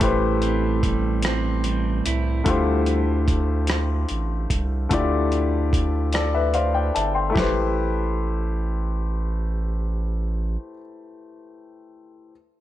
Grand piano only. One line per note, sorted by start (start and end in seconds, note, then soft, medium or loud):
0.00 2.41 A3 medium
0.00 2.42 E4 medium
0.00 2.42 G4 medium
0.00 2.43 B4 medium
0.04 2.43 C5 medium
2.44 4.86 D3 medium
2.44 4.86 A3 medium
2.44 4.87 E4 medium
2.44 4.87 F4 medium
2.49 4.88 G4 medium
2.49 4.88 C5 medium
4.89 7.31 D3 medium
4.89 7.28 A3 medium
4.89 7.31 E4 medium
4.89 7.32 F4 medium
4.93 7.33 G4 medium
4.93 6.12 D5 medium
6.14 6.33 A4 soft
6.14 6.33 D5 medium
6.34 6.53 B4 soft
6.34 6.53 E5 soft
6.54 6.74 C5 soft
6.54 6.74 D5 medium
6.54 6.73 F5 medium
6.74 6.94 D5 soft
6.74 6.94 G5 medium
6.95 7.15 E5 soft
6.95 7.14 A5 medium
7.15 7.54 G5 soft
7.15 7.54 C6 soft
7.30 10.69 A3 medium
7.30 10.72 E4 medium
7.35 10.74 G4 medium
7.35 10.76 B4 medium
7.40 10.79 C5 medium